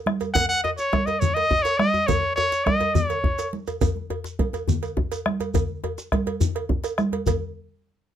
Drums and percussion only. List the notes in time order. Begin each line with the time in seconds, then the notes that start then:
0.06 bombo rim, high conga
0.20 cowbell, djembe tone, shekere
0.35 bombo low, cowbell, low conga, djembe bass, shekere
0.50 djembe slap, high conga
0.64 cowbell, djembe tone
0.78 djembe slap, shekere
0.93 bombo rim, bombo low, cowbell, high conga
1.07 cowbell, djembe tone, shekere
1.22 low conga, djembe bass, shekere
1.36 cowbell, high conga, shekere
1.51 bombo rim, bombo low, djembe tone
1.65 cowbell, djembe slap, shekere
1.79 bombo rim, high conga
1.94 djembe tone, shekere
2.08 bombo low, cowbell, low conga, djembe bass, shekere
2.23 djembe slap, high conga
2.37 cowbell, djembe tone
2.52 djembe slap, shekere
2.66 bombo rim, bombo low, cowbell, high conga
2.81 cowbell, djembe tone, shekere
2.95 djembe bass, low conga, shekere
3.10 cowbell, high conga, shekere
3.24 bombo rim, bombo low, djembe tone
3.38 cowbell, djembe slap, shekere
3.53 high conga
3.67 cowbell, djembe tone, shekere
3.81 bombo low, cowbell, low conga, djembe bass, shekere
3.96 djembe slap, high conga
4.10 cowbell, djembe tone
4.24 djembe slap, shekere
4.39 bombo low, cowbell, high conga
4.53 cowbell, djembe tone, shekere
4.68 djembe bass, low conga, shekere
4.83 cowbell, high conga, shekere
4.97 bombo rim, bombo low, djembe tone
5.12 cowbell, djembe slap, shekere
5.26 bombo rim, high conga
5.40 cowbell, djembe tone, shekere
5.54 bombo low, cowbell, high conga, djembe bass, low conga, shekere
5.69 high conga
5.84 cowbell, djembe tone, high conga
5.98 djembe slap, shekere
6.12 bombo rim, bombo low, cowbell, high conga
6.26 cowbell, djembe tone
6.41 high conga, djembe bass, low conga, shekere
6.55 bombo rim, cowbell
6.69 bombo low, djembe slap, djembe tone
6.84 bombo rim, cowbell, djembe slap, shekere
6.98 bombo rim, djembe slap, high conga, shekere
7.12 cowbell, djembe slap, djembe tone
7.26 bombo low, cowbell, djembe bass, low conga, shekere